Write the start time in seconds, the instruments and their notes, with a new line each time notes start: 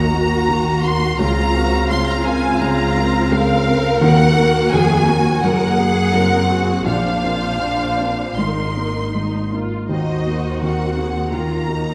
Already playing: grand piano D#2 D#3 A#3 F#4 A#4, double bass section D#2, viola section A#3 F#4, cello section D#4, violin section A#5
0.13 grand piano A#3 F#4 A#4, cello section F#4
0.48 grand piano D#2 D#3
0.84 grand piano A#3 F#4 A#4, violin section C6
1.19 grand piano C#2 C#3, double bass section C#2, viola section C4 F5, cello section F4, violin section A#5
1.54 grand piano C4 A#4 F5, cello section F#4
1.90 grand piano C#2 C#3, cello section F4, violin section C6
2.07 violin section A#5
2.25 grand piano C4 F4 A#4, violin section G#5
2.60 grand piano C#2 C#3, cello section F4, violin section A#5
2.96 grand piano C4 F4 A#4
3.31 grand piano C#2 C#3, cello section A#4, violin section F5
3.66 grand piano C4 F4 A#4
4.01 double bass section D#2, grand piano D#2 D#3, timpani D#3, viola section A#3 F#4, violin section F#5
4.37 grand piano A#3 F#4 A#4
4.72 grand piano D#2 D#3, double bass section F2, cello section G#4, violin section G#5
5.08 grand piano A#3 F#4 A#4, cello section F#4
5.42 grand piano F#1 F#2, double bass section F#2, viola section A#3 G#4, cello section A#4, violin section F#5
5.78 grand piano A#3 F#4 G#4, cello section G#4
6.14 grand piano F#1 F#2, viola section C4, cello section A#4
6.49 grand piano A#3 F#4 G#4, cello section F#4
6.85 grand piano A#1 A#2, double bass section A#1, timpani A#2, viola section D4 C5, cello section D4, violin section F5
7.22 grand piano C4 D4 A#4, cello section F4
7.58 grand piano A#1 A#2, cello section D4
7.97 grand piano C4 D4 A#4
8.37 double bass section G#1, grand piano G#1 G#2, cello section D#4, viola section D#4 A#4, violin section C6
8.76 grand piano A#3 D#4 A#4
9.15 grand piano G#1 G#2, viola section D#4
9.52 grand piano A#3 D#4 A#4, viola section F4
9.89 grand piano D#2 D#3, double bass section D#2, viola section D#4 C5, cello section F#4, violin section D#5
10.26 grand piano A#3 F#4 A#4
10.62 grand piano D#2 D#3, viola section C4 A#4, violin section F#5
10.97 grand piano A#3 F#4 A#4, viola section G#4
11.32 grand piano D#2 D#3, viola section A#3 A#4, cello section F4, violin section A#5
11.68 grand piano A#3 F#4 A#4, viola section A#3, cello section D#4